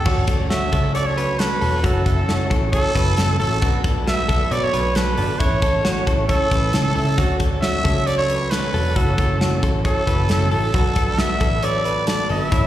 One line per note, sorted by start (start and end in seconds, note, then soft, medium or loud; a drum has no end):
0.00 0.25 A4 loud
0.05 0.69 D2 loud
0.05 0.39 D3 medium
0.05 0.39 F#3 medium
0.05 0.39 A3 medium
0.05 0.37 C#4 medium
0.05 0.25 D4 medium
0.05 0.28 F#4 medium
0.05 0.25 F#4 medium
0.05 0.25 A4 medium
0.05 0.25 C#5 medium
0.05 kick loud
0.05 crash loud
0.27 0.47 D4 medium
0.27 0.47 F#4 medium
0.27 0.50 A4 medium
0.27 0.47 A4 medium
0.27 0.47 C#5 medium
0.27 kick loud
0.27 closed hi-hat medium
0.39 0.72 F#3 soft
0.39 0.73 A3 soft
0.39 0.72 C#4 soft
0.50 0.70 D4 medium
0.50 0.72 F#4 medium
0.50 0.70 F#4 medium
0.50 0.70 A4 medium
0.50 0.70 C#5 medium
0.50 0.92 E5 loud
0.50 snare loud
0.50 closed hi-hat medium
0.72 1.58 C#2 medium
0.72 1.39 F#3 medium
0.72 1.40 A3 medium
0.72 1.41 C#4 medium
0.72 0.92 D4 medium
0.72 0.92 F#4 medium
0.72 0.94 A4 medium
0.72 0.92 A4 medium
0.72 0.92 C#5 medium
0.72 kick loud
0.72 closed hi-hat medium
0.95 1.14 D4 medium
0.95 1.14 F#4 medium
0.95 1.14 A4 medium
0.95 1.17 C#5 medium
0.95 1.14 C#5 loud
0.95 1.08 D5 loud
0.95 closed hi-hat medium
1.06 1.41 C#5 loud
1.17 1.36 D4 medium
1.17 1.36 F#4 medium
1.17 1.36 A4 medium
1.17 1.39 B4 medium
1.17 1.36 B4 medium
1.17 closed hi-hat medium
1.39 1.60 D3 medium
1.39 1.61 F#3 medium
1.39 1.62 A3 medium
1.39 1.63 C#4 medium
1.39 1.59 D4 medium
1.39 1.58 F#4 medium
1.39 1.60 A4 medium
1.39 1.58 A4 medium
1.39 1.86 B4 medium
1.39 1.59 B4 medium
1.39 snare loud
1.39 closed hi-hat loud
1.61 1.81 E1 medium
1.61 1.84 D3 medium
1.61 1.85 F#3 medium
1.61 1.84 A3 medium
1.61 1.85 C#4 medium
1.61 1.81 D4 medium
1.61 1.81 F#4 medium
1.61 1.84 A4 medium
1.61 1.81 A4 medium
1.61 1.81 C#5 medium
1.61 open hi-hat medium
1.84 2.48 F#1 loud
1.84 2.17 F#2 medium
1.84 2.18 C#3 medium
1.84 2.18 E3 medium
1.84 2.17 A3 medium
1.84 2.15 C#4 medium
1.84 2.03 E4 medium
1.84 2.06 F#4 loud
1.84 2.03 F#4 medium
1.84 2.03 A4 medium
1.84 2.51 A4 medium
1.84 2.03 C#5 loud
1.84 kick loud
1.84 closed hi-hat medium
2.06 2.25 E4 medium
2.06 2.25 F#4 medium
2.06 2.25 A4 medium
2.06 2.29 A4 medium
2.06 2.25 E5 medium
2.06 kick loud
2.06 closed hi-hat medium
2.17 2.50 E3 soft
2.17 2.51 A3 soft
2.17 2.50 C#4 medium
2.28 2.47 E4 medium
2.28 2.47 F#4 medium
2.28 2.51 F#4 medium
2.28 2.47 A4 medium
2.28 2.47 C#5 medium
2.28 snare loud
2.28 closed hi-hat medium
2.50 2.79 A1 medium
2.50 3.16 C#3 medium
2.50 3.17 E3 medium
2.50 3.19 A3 medium
2.50 3.19 C#4 medium
2.50 2.69 E4 medium
2.50 2.69 F#4 medium
2.50 2.72 A4 medium
2.50 2.69 A4 medium
2.50 2.69 C#5 loud
2.50 kick loud
2.50 closed hi-hat medium
2.72 2.92 E4 medium
2.72 2.92 F#4 medium
2.72 3.36 A4 loud
2.72 2.92 A4 medium
2.72 2.95 C#5 loud
2.72 2.92 C#5 loud
2.72 kick medium
2.72 closed hi-hat medium
2.95 3.14 F#1 medium
2.95 3.14 E4 medium
2.95 3.14 F#4 medium
2.95 3.14 A4 medium
2.95 3.17 B4 medium
2.95 3.15 C#5 medium
2.95 kick loud
2.95 closed hi-hat medium
3.17 3.37 F#1 loud
3.17 3.39 C#3 medium
3.17 3.40 E3 medium
3.17 3.41 A3 medium
3.17 3.41 C#4 medium
3.17 3.37 E4 medium
3.17 3.36 F#4 medium
3.17 3.38 A4 medium
3.17 3.37 A4 medium
3.17 3.37 C#5 medium
3.17 snare loud
3.17 closed hi-hat loud
3.39 3.59 A1 medium
3.39 3.62 C#3 medium
3.39 3.63 E3 medium
3.39 3.63 A3 medium
3.39 3.64 C#4 medium
3.39 3.59 E4 medium
3.39 3.59 F#4 medium
3.39 3.81 A4 loud
3.39 3.62 A4 medium
3.39 3.59 A4 medium
3.39 3.59 C#5 medium
3.39 open hi-hat medium
3.62 4.26 B1 loud
3.62 3.96 B2 medium
3.62 3.96 F#3 medium
3.62 3.97 A3 loud
3.62 3.81 D4 medium
3.62 3.95 D4 medium
3.62 3.84 F#4 medium
3.62 3.81 F#4 medium
3.62 3.81 A4 medium
3.62 3.81 B4 loud
3.62 kick loud
3.62 closed hi-hat medium
3.84 4.03 D4 medium
3.84 4.03 F#4 medium
3.84 4.07 A4 medium
3.84 4.03 A4 medium
3.84 4.03 B4 medium
3.84 kick loud
3.84 closed hi-hat medium
3.96 4.29 F#3 soft
3.96 4.30 A3 soft
3.96 4.29 D4 medium
4.07 4.26 D4 medium
4.07 4.29 F#4 medium
4.07 4.26 F#4 medium
4.07 4.26 A4 medium
4.07 4.26 B4 medium
4.07 4.54 E5 loud
4.07 snare loud
4.07 closed hi-hat medium
4.28 4.48 B1 medium
4.28 4.95 B2 medium
4.28 4.96 F#3 medium
4.28 4.98 A3 medium
4.28 4.48 D4 medium
4.28 4.97 D4 medium
4.28 4.48 F#4 medium
4.28 4.51 A4 medium
4.28 4.48 A4 medium
4.28 4.48 B4 medium
4.28 kick loud
4.28 closed hi-hat medium
4.51 4.70 B2 loud
4.51 4.70 D4 medium
4.51 4.70 F#4 medium
4.51 4.70 A4 medium
4.51 4.70 B4 loud
4.51 4.73 C#5 medium
4.51 4.66 D5 loud
4.51 closed hi-hat medium
4.64 4.97 C#5 loud
4.73 5.12 B1 medium
4.73 4.92 D4 medium
4.73 4.92 F#4 medium
4.73 4.92 A4 medium
4.73 4.95 B4 medium
4.73 4.92 B4 medium
4.73 closed hi-hat medium
4.95 5.16 B2 medium
4.95 5.18 F#3 medium
4.95 5.19 A3 medium
4.95 5.14 D4 medium
4.95 5.19 D4 medium
4.95 5.14 F#4 medium
4.95 5.14 A4 medium
4.95 5.17 A4 medium
4.95 5.14 B4 medium
4.95 5.41 B4 medium
4.95 snare loud
4.95 closed hi-hat loud
5.17 5.37 G1 medium
5.17 5.40 B2 medium
5.17 5.41 F#3 medium
5.17 5.40 A3 medium
5.17 5.36 D4 medium
5.17 5.42 D4 medium
5.17 5.36 F#4 medium
5.17 5.36 A4 medium
5.17 5.39 A4 medium
5.17 5.36 D5 medium
5.17 open hi-hat medium
5.39 6.04 A1 loud
5.39 5.73 A2 medium
5.39 5.74 E3 medium
5.39 5.74 A3 medium
5.39 5.59 C#4 medium
5.39 5.74 C#4 medium
5.39 5.62 E4 medium
5.39 5.59 E4 medium
5.39 5.72 E4 medium
5.39 5.59 A4 medium
5.39 6.06 C#5 medium
5.39 5.59 C#5 medium
5.39 kick loud
5.39 closed hi-hat medium
5.62 5.81 C#4 medium
5.62 5.81 E4 medium
5.62 5.85 A4 medium
5.62 5.81 A4 medium
5.62 5.81 C#5 medium
5.62 kick loud
5.62 closed hi-hat medium
5.73 6.06 A3 soft
5.73 6.07 C#4 soft
5.73 6.07 E4 medium
5.84 6.03 C#4 medium
5.84 6.04 E4 medium
5.84 6.07 F#4 medium
5.84 6.04 A4 medium
5.84 6.04 C#5 medium
5.84 snare loud
5.84 closed hi-hat medium
6.06 6.35 A1 medium
6.06 6.72 E3 medium
6.06 6.74 A3 medium
6.06 6.26 C#4 medium
6.06 6.75 C#4 medium
6.06 6.26 E4 medium
6.06 6.75 E4 medium
6.06 6.29 A4 medium
6.06 6.26 A4 medium
6.06 6.26 C#5 loud
6.06 kick loud
6.06 closed hi-hat medium
6.29 6.48 C#4 medium
6.29 6.48 E4 medium
6.29 6.92 A4 loud
6.29 6.48 A4 medium
6.29 6.51 C#5 medium
6.29 6.48 C#5 loud
6.29 kick medium
6.29 closed hi-hat medium
6.51 6.70 A1 medium
6.51 6.70 C#4 medium
6.51 6.70 E4 medium
6.51 6.71 A4 medium
6.51 6.73 B4 medium
6.51 6.71 C#5 medium
6.51 kick medium
6.51 closed hi-hat medium
6.73 6.93 C#2 loud
6.73 6.94 E3 medium
6.73 6.95 A3 medium
6.73 6.92 C#4 medium
6.73 6.96 C#4 medium
6.73 6.92 E4 medium
6.73 6.97 E4 medium
6.73 6.94 A4 medium
6.73 6.92 A4 medium
6.73 6.92 C#5 medium
6.73 snare loud
6.73 closed hi-hat medium
6.95 7.15 C#2 medium
6.95 7.17 E3 medium
6.95 7.18 A3 medium
6.95 7.15 C#4 medium
6.95 7.18 C#4 medium
6.95 7.15 E4 medium
6.95 7.19 E4 medium
6.95 7.18 A4 medium
6.95 7.37 A4 loud
6.95 7.15 A4 medium
6.95 7.15 E5 medium
6.95 open hi-hat medium
7.18 7.81 D2 loud
7.18 7.51 D3 medium
7.18 7.51 F#3 medium
7.18 7.51 A3 medium
7.18 7.49 C#4 medium
7.18 7.37 D4 medium
7.18 7.40 F#4 medium
7.18 7.37 F#4 medium
7.18 7.37 A4 medium
7.18 7.37 C#5 loud
7.18 kick loud
7.18 closed hi-hat medium
7.40 7.59 D4 medium
7.40 7.59 F#4 medium
7.40 7.62 A4 medium
7.40 7.59 A4 medium
7.40 7.59 C#5 medium
7.40 kick loud
7.40 closed hi-hat medium
7.51 7.85 F#3 soft
7.51 7.85 A3 soft
7.51 7.84 C#4 medium
7.62 7.82 D4 medium
7.62 7.85 F#4 medium
7.62 7.82 F#4 medium
7.62 7.82 A4 medium
7.62 7.82 C#5 medium
7.62 8.08 E5 loud
7.62 snare loud
7.62 closed hi-hat medium
7.84 8.70 C#2 medium
7.84 8.52 F#3 medium
7.84 8.53 A3 medium
7.84 8.54 C#4 medium
7.84 8.04 D4 medium
7.84 8.04 F#4 medium
7.84 8.06 A4 medium
7.84 8.04 A4 medium
7.84 8.04 C#5 medium
7.84 kick loud
7.84 closed hi-hat medium
8.06 8.26 D4 medium
8.06 8.26 F#4 medium
8.06 8.26 A4 medium
8.06 8.29 C#5 medium
8.06 8.26 C#5 loud
8.06 8.17 D5 loud
8.06 closed hi-hat medium
8.18 8.52 C#5 loud
8.29 8.48 D4 medium
8.29 8.48 F#4 medium
8.29 8.48 A4 medium
8.29 8.52 B4 medium
8.29 8.48 C#5 medium
8.29 closed hi-hat medium
8.51 8.72 D3 medium
8.51 8.74 F#3 medium
8.51 8.75 A3 medium
8.51 8.75 C#4 medium
8.51 8.71 D4 medium
8.51 8.71 F#4 medium
8.51 8.73 A4 medium
8.51 8.71 A4 medium
8.51 8.97 B4 loud
8.51 8.71 C#5 medium
8.51 snare loud
8.51 closed hi-hat medium
8.74 8.93 E1 medium
8.74 8.96 D3 medium
8.74 8.97 F#3 medium
8.74 8.96 A3 medium
8.74 8.97 C#4 medium
8.74 8.93 D4 medium
8.74 8.93 F#4 medium
8.74 8.96 A4 medium
8.74 8.93 A4 medium
8.74 8.93 C#5 medium
8.74 open hi-hat medium
8.96 9.59 F#1 loud
8.96 9.29 F#2 medium
8.96 9.30 C#3 medium
8.96 9.30 E3 medium
8.96 9.30 A3 loud
8.96 9.28 C#4 loud
8.96 9.15 E4 medium
8.96 9.18 F#4 loud
8.96 9.15 F#4 medium
8.96 9.63 A4 medium
8.96 9.15 A4 medium
8.96 9.15 C#5 loud
8.96 kick loud
8.96 closed hi-hat medium
9.18 9.37 E4 medium
9.18 9.37 F#4 medium
9.18 9.37 A4 medium
9.18 9.41 A4 medium
9.18 9.37 C#5 medium
9.18 kick loud
9.18 closed hi-hat medium
9.29 9.63 E3 soft
9.29 9.63 A3 medium
9.29 9.63 C#4 medium
9.41 9.59 E4 medium
9.41 9.63 F#4 medium
9.41 9.59 F#4 medium
9.41 9.59 A4 medium
9.41 9.59 C#5 medium
9.41 snare loud
9.41 closed hi-hat medium
9.63 9.91 A1 medium
9.63 10.28 C#3 medium
9.63 10.29 E3 medium
9.63 10.31 A3 medium
9.63 10.31 C#4 medium
9.63 9.81 E4 medium
9.63 9.81 F#4 medium
9.63 9.84 A4 medium
9.63 9.81 A4 medium
9.63 9.82 C#5 loud
9.63 kick loud
9.63 closed hi-hat medium
9.85 10.04 E4 medium
9.85 10.04 F#4 medium
9.85 10.04 A4 medium
9.85 10.48 A4 loud
9.85 10.07 C#5 medium
9.85 10.04 C#5 loud
9.85 kick loud
9.85 closed hi-hat medium
10.07 10.26 F#1 medium
10.07 10.26 E4 medium
10.07 10.26 F#4 medium
10.07 10.26 A4 medium
10.07 10.29 B4 medium
10.07 10.26 C#5 medium
10.07 kick medium
10.07 closed hi-hat medium
10.29 10.49 F#1 loud
10.29 10.50 C#3 medium
10.29 10.52 E3 medium
10.29 10.53 A3 medium
10.29 10.53 C#4 medium
10.29 10.49 E4 medium
10.29 10.49 F#4 medium
10.29 10.50 A4 medium
10.29 10.49 A4 medium
10.29 10.49 C#5 medium
10.29 snare loud
10.29 closed hi-hat medium
10.51 10.71 A1 medium
10.51 10.74 C#3 medium
10.51 10.74 E3 medium
10.51 10.74 A3 medium
10.51 10.75 C#4 medium
10.51 10.71 E4 medium
10.51 10.70 F#4 medium
10.51 10.74 A4 medium
10.51 11.20 A4 loud
10.51 10.71 A4 medium
10.51 10.71 C#5 medium
10.51 open hi-hat medium
10.74 11.37 B1 loud
10.74 11.07 B2 medium
10.74 11.08 F#3 medium
10.74 11.08 A3 loud
10.74 10.93 D4 loud
10.74 11.07 D4 loud
10.74 10.92 F#4 medium
10.74 10.96 F#4 loud
10.74 10.92 A4 medium
10.74 10.93 B4 loud
10.74 kick loud
10.74 closed hi-hat loud
10.96 11.15 D4 medium
10.96 11.15 F#4 medium
10.96 11.18 A4 medium
10.96 11.15 A4 medium
10.96 11.15 B4 medium
10.96 kick loud
10.96 closed hi-hat medium
11.08 11.41 F#3 soft
11.08 11.42 A3 soft
11.08 11.41 D4 medium
11.18 11.37 D4 medium
11.18 11.41 F#4 medium
11.18 11.37 F#4 medium
11.18 11.37 A4 medium
11.18 11.38 B4 medium
11.18 11.66 E5 loud
11.18 snare loud
11.18 closed hi-hat medium
11.41 12.26 A1 medium
11.41 12.06 B2 medium
11.41 12.07 F#3 medium
11.41 12.09 A3 medium
11.41 11.60 D4 medium
11.41 12.09 D4 medium
11.41 11.59 F#4 medium
11.41 11.63 A4 medium
11.41 11.60 A4 medium
11.41 11.59 B4 medium
11.41 kick loud
11.41 closed hi-hat medium
11.63 11.82 D4 medium
11.63 11.82 F#4 medium
11.63 11.82 A4 medium
11.63 11.82 B4 loud
11.63 11.85 C#5 medium
11.63 12.08 D5 loud
11.63 closed hi-hat medium
11.85 12.04 D4 medium
11.85 12.04 F#4 medium
11.85 12.04 A4 medium
11.85 12.07 B4 medium
11.85 12.04 B4 medium
11.85 closed hi-hat medium
12.07 12.28 B2 medium
12.07 12.29 F#3 medium
12.07 12.31 A3 medium
12.07 12.26 D4 medium
12.07 12.31 D4 medium
12.07 12.26 F#4 medium
12.07 12.26 A4 medium
12.07 12.28 A4 medium
12.07 12.26 D5 medium
12.07 12.29 D5 loud
12.07 snare loud
12.07 closed hi-hat loud
12.29 12.49 G1 medium
12.29 12.52 B2 medium
12.29 12.52 F#3 medium
12.29 12.52 A3 medium
12.29 12.48 D4 medium
12.29 12.53 D4 medium
12.29 12.48 F#4 medium
12.29 12.51 A4 medium
12.29 12.48 A4 medium
12.29 12.48 B4 medium
12.29 12.67 E5 loud
12.29 open hi-hat medium
12.52 12.67 A1 loud
12.52 12.67 A2 medium
12.52 12.67 E3 medium
12.52 12.67 A3 medium
12.52 12.67 C#4 medium
12.52 12.67 C#4 loud
12.52 12.67 E4 medium
12.52 12.67 A4 medium
12.52 12.67 C#5 loud
12.52 kick loud
12.52 closed hi-hat medium